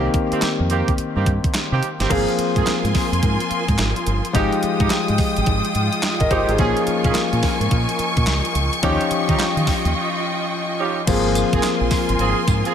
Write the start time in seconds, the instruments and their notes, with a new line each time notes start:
Already playing: grand piano D#3 A#3 C4 G4
0.14 kick, closed hi-hat
0.31 horn section A#3 C4 D#4 G4, muted fingered electric bass stroke, closed hi-hat
0.42 muted fingered electric bass stroke, snare, clap, closed hi-hat
0.60 fingered electric bass F2
0.70 horn section A#3 C4 D#4 G4, closed hi-hat
0.88 kick, closed hi-hat
0.98 muted fingered electric bass stroke, closed hi-hat
1.15 fingered electric bass G2, horn section A#3 C4 D#4 G4
1.26 kick, closed hi-hat
1.44 kick, closed hi-hat
1.54 snare, clap, closed hi-hat
1.72 fingered electric bass C3, horn section A#3 C4 D#4 G4
1.83 closed hi-hat
2.00 fingered electric bass G1, horn section A#3 C4 D#4 G4, snare, closed hi-hat
2.09 fingered electric bass G#1, grand piano F3 A#3 C4 G#4, horn section A#3 C4 F4 G#4, string section F4 A#4 G#5 C6, kick, closed hi-hat, crash
2.28 closed hi-hat
2.38 muted fingered electric bass stroke, closed hi-hat
2.56 fingered electric bass G#2, horn section A#3 C4 F4 G#4, kick, closed hi-hat
2.67 muted fingered electric bass stroke, snare, clap, closed hi-hat
2.84 fingered electric bass G#2, closed hi-hat
2.95 kick, snare, open hi-hat
3.12 fingered electric bass F2, closed hi-hat
3.23 fingered electric bass G#2, kick, closed hi-hat
3.40 closed hi-hat
3.51 muted fingered electric bass stroke, closed hi-hat
3.68 fingered electric bass G#2, kick, closed hi-hat
3.78 fingered electric bass G#1, snare, clap, closed hi-hat
3.96 closed hi-hat
4.07 fingered electric bass G1, closed hi-hat
4.25 closed hi-hat
4.33 fingered electric bass G#1, grand piano F3 G#3 D#4 G4, horn section G#3 D#4 F4 G4, string section G#3 F4 G5 D#6, kick, closed hi-hat
4.52 closed hi-hat
4.63 muted fingered electric bass stroke, closed hi-hat
4.80 fingered electric bass G#2, horn section G#3 D#4 F4 G4, kick, closed hi-hat
4.90 muted fingered electric bass stroke, snare, clap, closed hi-hat
5.08 fingered electric bass G#2, closed hi-hat
5.18 kick, open hi-hat
5.37 fingered electric bass G#1, closed hi-hat
5.46 fingered electric bass G#1, kick, closed hi-hat
5.65 closed hi-hat
5.75 fingered electric bass G#2, closed hi-hat
5.93 closed hi-hat
6.03 snare, clap, closed hi-hat
6.20 fingered electric bass G#1, grand piano A#4 D#5, kick, closed hi-hat
6.30 fingered electric bass G1, horn section G#3 D#4 F4 G4, grand piano G4 C5, kick, closed hi-hat
6.48 fingered electric bass G#1, grand piano D#4 G#4, closed hi-hat
6.58 fingered electric bass A#1, grand piano F3 A#3 C#4 G#4, horn section A#3 C#4 F4 G#4, string section A#4 G#5 C#6, kick, closed hi-hat
6.77 closed hi-hat
6.87 muted fingered electric bass stroke, closed hi-hat
7.04 fingered electric bass A#2, horn section A#3 C#4 F4 G#4, kick, closed hi-hat
7.15 muted fingered electric bass stroke, snare, clap, closed hi-hat
7.33 fingered electric bass A#2, closed hi-hat
7.43 kick, snare, open hi-hat
7.60 fingered electric bass G#2, closed hi-hat
7.71 fingered electric bass A#2, kick, closed hi-hat
7.89 closed hi-hat
7.99 muted fingered electric bass stroke, closed hi-hat
8.17 fingered electric bass A#2, kick, closed hi-hat
8.27 fingered electric bass C#2, snare, clap, closed hi-hat
8.45 closed hi-hat
8.55 fingered electric bass C#2, closed hi-hat
8.73 closed hi-hat
8.83 fingered electric bass D#2, grand piano F3 C#4 D#4 G4, horn section C#4 D#4 F4 G4, string section F4 D#5 G5, kick, closed hi-hat
9.01 closed hi-hat
9.11 muted fingered electric bass stroke, closed hi-hat
9.29 fingered electric bass D#3, horn section C#4 D#4 F4 G4, kick, closed hi-hat
9.39 muted fingered electric bass stroke, snare, clap, closed hi-hat
9.57 fingered electric bass D#3, closed hi-hat
9.67 kick, snare, open hi-hat
9.85 fingered electric bass D#2, closed hi-hat
10.79 horn section C#4 D#4 F4 G4
11.07 fingered electric bass G#1, grand piano F3 A#3 C4 G#4, string section F4 A#4 G#5 C6, kick, closed hi-hat, crash, tambourine
11.35 closed hi-hat, tambourine
11.53 fingered electric bass G#1, horn section A#3 C4 F4 G#4, kick, closed hi-hat
11.63 snare, clap, closed hi-hat, tambourine
11.81 fingered electric bass A#1
11.91 kick, snare, open hi-hat, tambourine
12.09 fingered electric bass G#1, closed hi-hat
12.19 fingered electric bass G#1, horn section A#3 C4 F4 G#4, closed hi-hat
12.48 fingered electric bass G#2, kick, closed hi-hat, tambourine
12.65 horn section A#3 C4 F4 G#4, closed hi-hat